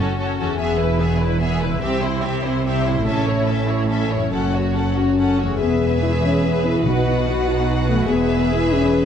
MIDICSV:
0, 0, Header, 1, 9, 480
1, 0, Start_track
1, 0, Key_signature, 4, "major"
1, 0, Tempo, 412371
1, 691, Time_signature, 6, 3, 24, 8
1, 3571, Tempo, 423131
1, 6931, Tempo, 413793
1, 10434, End_track
2, 0, Start_track
2, 0, Title_t, "Violin section"
2, 0, Program_c, 0, 48
2, 0, Note_on_c, 0, 69, 42
2, 209, Note_off_c, 0, 69, 0
2, 230, Note_on_c, 0, 69, 42
2, 453, Note_off_c, 0, 69, 0
2, 467, Note_on_c, 0, 69, 44
2, 694, Note_off_c, 0, 69, 0
2, 697, Note_on_c, 0, 76, 47
2, 916, Note_off_c, 0, 76, 0
2, 922, Note_on_c, 0, 71, 41
2, 1164, Note_on_c, 0, 76, 39
2, 1165, Note_off_c, 0, 71, 0
2, 1388, Note_on_c, 0, 71, 46
2, 1406, Note_off_c, 0, 76, 0
2, 1628, Note_on_c, 0, 76, 42
2, 1638, Note_off_c, 0, 71, 0
2, 1861, Note_off_c, 0, 76, 0
2, 1872, Note_on_c, 0, 71, 45
2, 2115, Note_on_c, 0, 76, 50
2, 2120, Note_off_c, 0, 71, 0
2, 2343, Note_off_c, 0, 76, 0
2, 2368, Note_on_c, 0, 72, 43
2, 2603, Note_on_c, 0, 76, 39
2, 2606, Note_off_c, 0, 72, 0
2, 2844, Note_off_c, 0, 76, 0
2, 2857, Note_on_c, 0, 72, 43
2, 3092, Note_off_c, 0, 72, 0
2, 3100, Note_on_c, 0, 76, 41
2, 3318, Note_off_c, 0, 76, 0
2, 3339, Note_on_c, 0, 72, 46
2, 3576, Note_off_c, 0, 72, 0
2, 3587, Note_on_c, 0, 76, 44
2, 3799, Note_off_c, 0, 76, 0
2, 3819, Note_on_c, 0, 73, 39
2, 4049, Note_off_c, 0, 73, 0
2, 4052, Note_on_c, 0, 76, 38
2, 4285, Note_off_c, 0, 76, 0
2, 4296, Note_on_c, 0, 73, 42
2, 4527, Note_off_c, 0, 73, 0
2, 4527, Note_on_c, 0, 76, 37
2, 4747, Note_off_c, 0, 76, 0
2, 4766, Note_on_c, 0, 73, 38
2, 5005, Note_off_c, 0, 73, 0
2, 5013, Note_on_c, 0, 78, 38
2, 5234, Note_off_c, 0, 78, 0
2, 5256, Note_on_c, 0, 73, 34
2, 5493, Note_off_c, 0, 73, 0
2, 5510, Note_on_c, 0, 78, 31
2, 5736, Note_on_c, 0, 73, 34
2, 5741, Note_off_c, 0, 78, 0
2, 5976, Note_off_c, 0, 73, 0
2, 5991, Note_on_c, 0, 78, 33
2, 6208, Note_off_c, 0, 78, 0
2, 6220, Note_on_c, 0, 73, 35
2, 6458, Note_off_c, 0, 73, 0
2, 6469, Note_on_c, 0, 76, 47
2, 7854, Note_off_c, 0, 76, 0
2, 7901, Note_on_c, 0, 78, 47
2, 9303, Note_off_c, 0, 78, 0
2, 9322, Note_on_c, 0, 76, 59
2, 10434, Note_off_c, 0, 76, 0
2, 10434, End_track
3, 0, Start_track
3, 0, Title_t, "Violin section"
3, 0, Program_c, 1, 48
3, 0, Note_on_c, 1, 66, 40
3, 198, Note_off_c, 1, 66, 0
3, 212, Note_on_c, 1, 66, 41
3, 436, Note_off_c, 1, 66, 0
3, 450, Note_on_c, 1, 66, 43
3, 685, Note_off_c, 1, 66, 0
3, 693, Note_on_c, 1, 68, 47
3, 914, Note_off_c, 1, 68, 0
3, 936, Note_on_c, 1, 71, 42
3, 1172, Note_off_c, 1, 71, 0
3, 1172, Note_on_c, 1, 68, 43
3, 1409, Note_on_c, 1, 71, 44
3, 1410, Note_off_c, 1, 68, 0
3, 1642, Note_on_c, 1, 68, 44
3, 1648, Note_off_c, 1, 71, 0
3, 1868, Note_off_c, 1, 68, 0
3, 1885, Note_on_c, 1, 71, 43
3, 2126, Note_off_c, 1, 71, 0
3, 2130, Note_on_c, 1, 67, 51
3, 2351, Note_off_c, 1, 67, 0
3, 2378, Note_on_c, 1, 64, 45
3, 2610, Note_on_c, 1, 67, 42
3, 2611, Note_off_c, 1, 64, 0
3, 2844, Note_on_c, 1, 64, 44
3, 2847, Note_off_c, 1, 67, 0
3, 3085, Note_off_c, 1, 64, 0
3, 3099, Note_on_c, 1, 67, 42
3, 3318, Note_off_c, 1, 67, 0
3, 3339, Note_on_c, 1, 64, 42
3, 3576, Note_off_c, 1, 64, 0
3, 3578, Note_on_c, 1, 69, 48
3, 3794, Note_off_c, 1, 69, 0
3, 3812, Note_on_c, 1, 73, 42
3, 4039, Note_on_c, 1, 69, 39
3, 4045, Note_off_c, 1, 73, 0
3, 4269, Note_on_c, 1, 73, 40
3, 4278, Note_off_c, 1, 69, 0
3, 4508, Note_on_c, 1, 69, 38
3, 4514, Note_off_c, 1, 73, 0
3, 4737, Note_off_c, 1, 69, 0
3, 4753, Note_on_c, 1, 73, 37
3, 4999, Note_off_c, 1, 73, 0
3, 4999, Note_on_c, 1, 69, 40
3, 5227, Note_off_c, 1, 69, 0
3, 5247, Note_on_c, 1, 66, 35
3, 5480, Note_on_c, 1, 69, 35
3, 5489, Note_off_c, 1, 66, 0
3, 5726, Note_off_c, 1, 69, 0
3, 5731, Note_on_c, 1, 66, 34
3, 5973, Note_off_c, 1, 66, 0
3, 5973, Note_on_c, 1, 69, 33
3, 6198, Note_off_c, 1, 69, 0
3, 6212, Note_on_c, 1, 66, 34
3, 6454, Note_off_c, 1, 66, 0
3, 6455, Note_on_c, 1, 71, 47
3, 9282, Note_off_c, 1, 71, 0
3, 9329, Note_on_c, 1, 71, 59
3, 10434, Note_off_c, 1, 71, 0
3, 10434, End_track
4, 0, Start_track
4, 0, Title_t, "Viola section"
4, 0, Program_c, 2, 48
4, 0, Note_on_c, 2, 61, 46
4, 206, Note_off_c, 2, 61, 0
4, 220, Note_on_c, 2, 61, 41
4, 442, Note_off_c, 2, 61, 0
4, 456, Note_on_c, 2, 61, 40
4, 689, Note_off_c, 2, 61, 0
4, 693, Note_on_c, 2, 59, 44
4, 914, Note_off_c, 2, 59, 0
4, 922, Note_on_c, 2, 64, 40
4, 1165, Note_off_c, 2, 64, 0
4, 1171, Note_on_c, 2, 59, 42
4, 1409, Note_off_c, 2, 59, 0
4, 1416, Note_on_c, 2, 64, 45
4, 1642, Note_on_c, 2, 59, 40
4, 1652, Note_off_c, 2, 64, 0
4, 1868, Note_off_c, 2, 59, 0
4, 1881, Note_on_c, 2, 64, 44
4, 2122, Note_on_c, 2, 60, 51
4, 2124, Note_off_c, 2, 64, 0
4, 2347, Note_off_c, 2, 60, 0
4, 2358, Note_on_c, 2, 64, 44
4, 2601, Note_off_c, 2, 64, 0
4, 2606, Note_on_c, 2, 60, 43
4, 2845, Note_off_c, 2, 60, 0
4, 2850, Note_on_c, 2, 64, 43
4, 3088, Note_off_c, 2, 64, 0
4, 3097, Note_on_c, 2, 60, 41
4, 3317, Note_off_c, 2, 60, 0
4, 3331, Note_on_c, 2, 64, 40
4, 3570, Note_on_c, 2, 61, 48
4, 3572, Note_off_c, 2, 64, 0
4, 3790, Note_off_c, 2, 61, 0
4, 3809, Note_on_c, 2, 64, 42
4, 4041, Note_on_c, 2, 61, 42
4, 4044, Note_off_c, 2, 64, 0
4, 4268, Note_on_c, 2, 64, 43
4, 4280, Note_off_c, 2, 61, 0
4, 4513, Note_off_c, 2, 64, 0
4, 4515, Note_on_c, 2, 61, 36
4, 4741, Note_off_c, 2, 61, 0
4, 4759, Note_on_c, 2, 64, 36
4, 4996, Note_on_c, 2, 61, 39
4, 5002, Note_off_c, 2, 64, 0
4, 5225, Note_off_c, 2, 61, 0
4, 5238, Note_on_c, 2, 66, 37
4, 5482, Note_on_c, 2, 61, 33
4, 5484, Note_off_c, 2, 66, 0
4, 5727, Note_off_c, 2, 61, 0
4, 5728, Note_on_c, 2, 66, 36
4, 5971, Note_off_c, 2, 66, 0
4, 5984, Note_on_c, 2, 61, 32
4, 6204, Note_off_c, 2, 61, 0
4, 6218, Note_on_c, 2, 66, 32
4, 6457, Note_off_c, 2, 66, 0
4, 6463, Note_on_c, 2, 68, 47
4, 7851, Note_off_c, 2, 68, 0
4, 7896, Note_on_c, 2, 66, 47
4, 9301, Note_off_c, 2, 66, 0
4, 9326, Note_on_c, 2, 68, 57
4, 10434, Note_off_c, 2, 68, 0
4, 10434, End_track
5, 0, Start_track
5, 0, Title_t, "French horn section"
5, 0, Program_c, 3, 60
5, 5720, Note_on_c, 3, 61, 55
5, 6175, Note_off_c, 3, 61, 0
5, 6202, Note_on_c, 3, 57, 47
5, 6444, Note_off_c, 3, 57, 0
5, 6453, Note_on_c, 3, 59, 57
5, 6917, Note_on_c, 3, 64, 65
5, 6919, Note_off_c, 3, 59, 0
5, 7028, Note_off_c, 3, 64, 0
5, 7157, Note_on_c, 3, 61, 71
5, 7400, Note_off_c, 3, 61, 0
5, 7416, Note_on_c, 3, 59, 57
5, 7653, Note_on_c, 3, 64, 64
5, 7655, Note_off_c, 3, 59, 0
5, 7889, Note_on_c, 3, 63, 69
5, 7894, Note_off_c, 3, 64, 0
5, 8371, Note_off_c, 3, 63, 0
5, 8389, Note_on_c, 3, 66, 67
5, 8615, Note_on_c, 3, 63, 69
5, 8620, Note_off_c, 3, 66, 0
5, 9084, Note_on_c, 3, 57, 66
5, 9091, Note_off_c, 3, 63, 0
5, 9306, Note_on_c, 3, 59, 65
5, 9321, Note_off_c, 3, 57, 0
5, 9795, Note_off_c, 3, 59, 0
5, 9824, Note_on_c, 3, 64, 74
5, 10048, Note_on_c, 3, 61, 78
5, 10056, Note_off_c, 3, 64, 0
5, 10434, Note_off_c, 3, 61, 0
5, 10434, End_track
6, 0, Start_track
6, 0, Title_t, "Harp"
6, 0, Program_c, 4, 46
6, 0, Note_on_c, 4, 42, 44
6, 0, Note_on_c, 4, 57, 33
6, 0, Note_on_c, 4, 61, 35
6, 0, Note_on_c, 4, 66, 36
6, 473, Note_on_c, 4, 40, 46
6, 527, Note_on_c, 4, 59, 36
6, 576, Note_on_c, 4, 64, 40
6, 604, Note_off_c, 4, 42, 0
6, 626, Note_on_c, 4, 68, 37
6, 630, Note_off_c, 4, 57, 0
6, 656, Note_off_c, 4, 61, 0
6, 683, Note_off_c, 4, 66, 0
6, 1914, Note_on_c, 4, 48, 48
6, 1965, Note_on_c, 4, 60, 38
6, 2006, Note_off_c, 4, 64, 0
6, 2020, Note_on_c, 4, 64, 40
6, 2038, Note_off_c, 4, 40, 0
6, 2065, Note_off_c, 4, 59, 0
6, 2074, Note_on_c, 4, 67, 41
6, 2115, Note_off_c, 4, 68, 0
6, 3358, Note_on_c, 4, 45, 43
6, 3410, Note_on_c, 4, 61, 37
6, 3449, Note_off_c, 4, 64, 0
6, 3463, Note_on_c, 4, 64, 39
6, 3482, Note_off_c, 4, 48, 0
6, 3508, Note_off_c, 4, 60, 0
6, 3514, Note_on_c, 4, 69, 37
6, 3562, Note_off_c, 4, 67, 0
6, 4796, Note_on_c, 4, 42, 37
6, 4838, Note_off_c, 4, 61, 0
6, 4851, Note_on_c, 4, 61, 31
6, 4898, Note_on_c, 4, 66, 31
6, 4918, Note_off_c, 4, 45, 0
6, 4936, Note_off_c, 4, 69, 0
6, 4950, Note_on_c, 4, 69, 32
6, 4969, Note_off_c, 4, 64, 0
6, 6251, Note_on_c, 4, 40, 42
6, 6303, Note_on_c, 4, 56, 32
6, 6355, Note_on_c, 4, 68, 35
6, 6371, Note_off_c, 4, 42, 0
6, 6399, Note_off_c, 4, 61, 0
6, 6404, Note_on_c, 4, 71, 35
6, 6422, Note_off_c, 4, 66, 0
6, 6448, Note_off_c, 4, 69, 0
6, 7679, Note_on_c, 4, 47, 41
6, 7733, Note_on_c, 4, 59, 35
6, 7783, Note_on_c, 4, 66, 35
6, 7808, Note_off_c, 4, 40, 0
6, 7820, Note_off_c, 4, 71, 0
6, 7834, Note_on_c, 4, 71, 34
6, 7835, Note_off_c, 4, 56, 0
6, 7862, Note_off_c, 4, 68, 0
6, 9115, Note_on_c, 4, 52, 52
6, 9153, Note_off_c, 4, 59, 0
6, 9167, Note_on_c, 4, 59, 43
6, 9221, Note_on_c, 4, 68, 41
6, 9240, Note_off_c, 4, 47, 0
6, 9259, Note_off_c, 4, 71, 0
6, 9273, Note_on_c, 4, 71, 43
6, 9292, Note_off_c, 4, 66, 0
6, 10434, Note_off_c, 4, 52, 0
6, 10434, Note_off_c, 4, 59, 0
6, 10434, Note_off_c, 4, 68, 0
6, 10434, Note_off_c, 4, 71, 0
6, 10434, End_track
7, 0, Start_track
7, 0, Title_t, "Timpani"
7, 0, Program_c, 5, 47
7, 7891, Note_on_c, 5, 47, 52
7, 8564, Note_off_c, 5, 47, 0
7, 10434, End_track
8, 0, Start_track
8, 0, Title_t, "Cello section"
8, 0, Program_c, 6, 48
8, 0, Note_on_c, 6, 42, 58
8, 580, Note_off_c, 6, 42, 0
8, 694, Note_on_c, 6, 40, 51
8, 2083, Note_off_c, 6, 40, 0
8, 2130, Note_on_c, 6, 48, 55
8, 3542, Note_off_c, 6, 48, 0
8, 3561, Note_on_c, 6, 45, 51
8, 4969, Note_off_c, 6, 45, 0
8, 5000, Note_on_c, 6, 42, 41
8, 6199, Note_off_c, 6, 42, 0
8, 6463, Note_on_c, 6, 40, 48
8, 7851, Note_off_c, 6, 40, 0
8, 7893, Note_on_c, 6, 47, 46
8, 9300, Note_off_c, 6, 47, 0
8, 9331, Note_on_c, 6, 40, 56
8, 10434, Note_off_c, 6, 40, 0
8, 10434, End_track
9, 0, Start_track
9, 0, Title_t, "Double bass section"
9, 0, Program_c, 7, 48
9, 0, Note_on_c, 7, 30, 56
9, 573, Note_off_c, 7, 30, 0
9, 685, Note_on_c, 7, 28, 51
9, 2078, Note_off_c, 7, 28, 0
9, 2135, Note_on_c, 7, 36, 52
9, 3545, Note_off_c, 7, 36, 0
9, 3565, Note_on_c, 7, 33, 52
9, 4971, Note_off_c, 7, 33, 0
9, 5003, Note_on_c, 7, 30, 44
9, 6200, Note_off_c, 7, 30, 0
9, 6465, Note_on_c, 7, 28, 47
9, 7852, Note_off_c, 7, 28, 0
9, 7897, Note_on_c, 7, 35, 47
9, 9301, Note_off_c, 7, 35, 0
9, 9327, Note_on_c, 7, 28, 56
9, 10434, Note_off_c, 7, 28, 0
9, 10434, End_track
0, 0, End_of_file